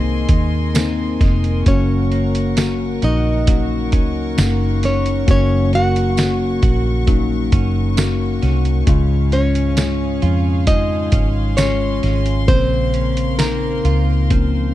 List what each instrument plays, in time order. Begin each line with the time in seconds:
Already playing: fingered electric bass C2, tine electric piano G#2 D#3 A#3 C4 D#4 G#4, clean electric guitar G#3 C4 D#4 A#4, string section A#4 D#5 G#5 C6
0.29 fingered electric bass D#2, clean electric guitar D#4, kick, closed hi-hat
0.74 tine electric piano A#3 C4 D#4, clean electric guitar C4, snare, closed hi-hat, tambourine
1.21 fingered electric bass F1, clean electric guitar D#4, kick, snare, closed hi-hat
1.44 closed hi-hat
1.66 fingered electric bass F#1, clean electric guitar F#2, tine electric piano C#3 A#3 C#4 F#4, nylon-string guitar C#4 C#5, string section F#5 C#6, kick, closed hi-hat
2.12 clean electric guitar A#3, closed hi-hat
2.35 closed hi-hat
2.57 tine electric piano A#3 C#4 F#4, clean electric guitar C#4, snare, closed hi-hat, tambourine
3.02 fingered electric bass A#1, nylon-string guitar D#4 D#5, clean electric guitar F#4, closed hi-hat
3.47 clean electric guitar F#3, tine electric piano A#3 C#4 F#4, kick, closed hi-hat
3.92 fingered electric bass C#2, clean electric guitar C#4, kick, closed hi-hat
4.37 fingered electric bass F#1, tine electric piano A#3 C#4 D#4, clean electric guitar A#3, snare, closed hi-hat, tambourine
4.83 clean electric guitar C#4, nylon-string guitar C#4 C#5, snare, closed hi-hat
5.06 closed hi-hat
5.26 fingered electric bass F#1, clean electric guitar F#2, tine electric piano C#3 A#3 C#4 F#4, nylon-string guitar C#4, kick, closed hi-hat
5.31 nylon-string guitar C#5
5.73 clean electric guitar A#3, nylon-string guitar F#4 F#5, closed hi-hat
5.96 closed hi-hat
6.17 tine electric piano A#3 C#4 F#4, clean electric guitar C#4, snare, closed hi-hat, tambourine
6.63 fingered electric bass A#1, clean electric guitar F#4, kick, closed hi-hat
7.07 clean electric guitar F#3, tine electric piano A#3 C#4 D#4, kick, closed hi-hat
7.52 fingered electric bass F#1, clean electric guitar C#4, kick, closed hi-hat
7.96 tine electric piano A#3 C#4 F#4, clean electric guitar A#3, snare, closed hi-hat, tambourine
8.42 fingered electric bass C2, clean electric guitar C#4, snare, closed hi-hat
8.65 closed hi-hat
8.87 fingered electric bass C#2, tine electric piano G#2 G#3 C#4 F4, clean electric guitar C#3, string section G#4 F5, kick, closed hi-hat
9.32 clean electric guitar G#3, nylon-string guitar C#4 C#5, closed hi-hat
9.55 closed hi-hat
9.76 tine electric piano G#3 C#4 F4, clean electric guitar C#4, snare, closed hi-hat, tambourine
10.22 fingered electric bass F2, clean electric guitar F4, closed hi-hat
10.66 clean electric guitar F3, tine electric piano G#3 C#4 F4, nylon-string guitar D#4 D#5, string section C6, kick, closed hi-hat
11.12 fingered electric bass G#1, clean electric guitar C#4, kick, closed hi-hat
11.57 tine electric piano G#3 C#4 F4, clean electric guitar G#3, nylon-string guitar C#4 C#5, snare, closed hi-hat, tambourine
12.03 fingered electric bass G#1, clean electric guitar C#4, snare, closed hi-hat
12.26 closed hi-hat
12.47 fingered electric bass A#1, clean electric guitar A#2, tine electric piano C#3 A#3 C4, nylon-string guitar C4 C5, string section A#4, kick, closed hi-hat
12.94 clean electric guitar C#4, closed hi-hat
13.17 closed hi-hat
13.38 tine electric piano A#3 C4 D#4, nylon-string guitar A#3 A#4, clean electric guitar C4, snare, closed hi-hat, tambourine
13.85 fingered electric bass C#2, clean electric guitar F4, closed hi-hat
14.30 clean electric guitar F3, tine electric piano A#3 C4 C#4, kick, closed hi-hat